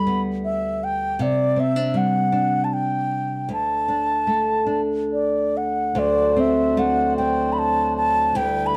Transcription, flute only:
0, 0, Header, 1, 2, 480
1, 0, Start_track
1, 0, Tempo, 755668
1, 767, Time_signature, 3, 2, 24, 8
1, 2208, Tempo, 794702
1, 2688, Tempo, 835655
1, 4128, Tempo, 789474
1, 5339, End_track
2, 0, Start_track
2, 0, Title_t, "Flute"
2, 0, Program_c, 0, 73
2, 0, Note_on_c, 0, 83, 85
2, 136, Note_off_c, 0, 83, 0
2, 284, Note_on_c, 0, 76, 79
2, 532, Note_on_c, 0, 79, 80
2, 542, Note_off_c, 0, 76, 0
2, 775, Note_on_c, 0, 74, 81
2, 785, Note_off_c, 0, 79, 0
2, 1017, Note_on_c, 0, 76, 79
2, 1026, Note_off_c, 0, 74, 0
2, 1253, Note_on_c, 0, 78, 76
2, 1262, Note_off_c, 0, 76, 0
2, 1679, Note_on_c, 0, 81, 45
2, 1688, Note_off_c, 0, 78, 0
2, 1736, Note_on_c, 0, 79, 77
2, 1746, Note_off_c, 0, 81, 0
2, 2218, Note_off_c, 0, 79, 0
2, 2240, Note_on_c, 0, 81, 77
2, 2999, Note_off_c, 0, 81, 0
2, 3181, Note_on_c, 0, 74, 51
2, 3435, Note_on_c, 0, 78, 60
2, 3444, Note_off_c, 0, 74, 0
2, 3674, Note_on_c, 0, 74, 73
2, 3682, Note_off_c, 0, 78, 0
2, 3913, Note_on_c, 0, 76, 71
2, 3922, Note_off_c, 0, 74, 0
2, 4136, Note_on_c, 0, 78, 78
2, 4145, Note_off_c, 0, 76, 0
2, 4364, Note_off_c, 0, 78, 0
2, 4367, Note_on_c, 0, 79, 74
2, 4583, Note_on_c, 0, 83, 55
2, 4592, Note_off_c, 0, 79, 0
2, 4621, Note_on_c, 0, 81, 85
2, 4630, Note_off_c, 0, 83, 0
2, 4848, Note_off_c, 0, 81, 0
2, 4852, Note_on_c, 0, 81, 88
2, 5092, Note_on_c, 0, 79, 89
2, 5101, Note_off_c, 0, 81, 0
2, 5275, Note_on_c, 0, 83, 58
2, 5284, Note_off_c, 0, 79, 0
2, 5339, Note_off_c, 0, 83, 0
2, 5339, End_track
0, 0, End_of_file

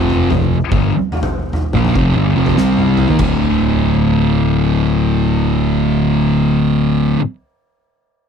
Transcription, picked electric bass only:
0, 0, Header, 1, 2, 480
1, 0, Start_track
1, 0, Key_signature, -1, "minor"
1, 0, Tempo, 621762
1, 543, Time_signature, 4, 2, 24, 8
1, 6399, End_track
2, 0, Start_track
2, 0, Title_t, "Picked electric bass"
2, 0, Program_c, 0, 34
2, 0, Note_on_c, 0, 29, 96
2, 204, Note_off_c, 0, 29, 0
2, 237, Note_on_c, 0, 29, 76
2, 453, Note_off_c, 0, 29, 0
2, 557, Note_on_c, 0, 31, 102
2, 697, Note_off_c, 0, 31, 0
2, 1339, Note_on_c, 0, 34, 95
2, 1492, Note_off_c, 0, 34, 0
2, 1510, Note_on_c, 0, 29, 99
2, 1653, Note_off_c, 0, 29, 0
2, 1662, Note_on_c, 0, 31, 86
2, 1807, Note_off_c, 0, 31, 0
2, 1818, Note_on_c, 0, 29, 92
2, 1972, Note_off_c, 0, 29, 0
2, 1991, Note_on_c, 0, 36, 85
2, 2357, Note_off_c, 0, 36, 0
2, 2393, Note_on_c, 0, 39, 98
2, 2462, Note_off_c, 0, 39, 0
2, 2467, Note_on_c, 0, 26, 101
2, 5512, Note_off_c, 0, 26, 0
2, 6399, End_track
0, 0, End_of_file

